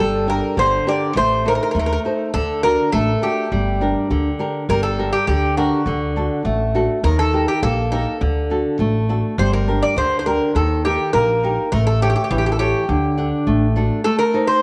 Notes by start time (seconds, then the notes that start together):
0.00 G1 G3 A4
0.27 D4 G4 A#4
0.57 G1 D3 C5
0.87 D4 G4 A#4 D5
1.16 A1 A3 C5
1.45 D#4 A4 A#4 C5
1.55 A#4
1.63 A#4
1.71 D#2 A#4
1.76 A3 A#4
1.86 A#4
1.93 A#4
2.05 D#4 A4 C5
2.34 D2 D3 A4
2.63 D4 F#4 A4 A#4
2.92 A1 A3 A4
3.22 D4 F#4 G4 A4
3.52 G1 G3
3.81 D4 G4 A#4
4.10 D2 D3
4.39 D4 G4 A#4
4.69 G1 G3 A#4
4.83 A4
4.99 D4 G4 A#4
5.13 G4
5.27 D2 D3 G4
5.57 D4 F#4 G4 A#4
5.86 D2 D3
6.16 D4 F#4 A4
6.45 A1 A3
6.75 D4 F#4 A4
7.04 D#2 D#3 A#4
7.19 A4
7.33 D#4 G4 A#4
7.48 G4
7.62 A#1 A#3 A4
7.92 D#4 G4 A4 A#4
8.21 D2 D3
8.50 D4 F#4 A4
8.79 A1 A3
9.09 D4 F#4 A4
9.38 G1 G3 C5
9.53 A#4
9.68 D4 G4 A#4
9.83 D5
9.96 D2 D3 C5
10.19 C5
10.26 D4 G4 A#4
10.55 D#2 D#3 A4
10.85 D#4 G4 A#4
11.13 A#1 A#3 A#4
11.43 D#4 G4 A#4
11.72 A1 A3 A#4
11.87 A4
12.02 G4 A4 C#5
12.10 G4
12.16 G4
12.24 G4
12.31 A1 E3 G4
12.38 G4
12.46 G4
12.52 A4
12.59 G4 A4 C#5
12.89 D2 D3
13.18 D4 A4 F#5
13.47 A1 A3
13.76 D4 F#4 A4
14.04 A3 A4
14.19 A#4
14.34 D#4 A4 C5
14.47 C5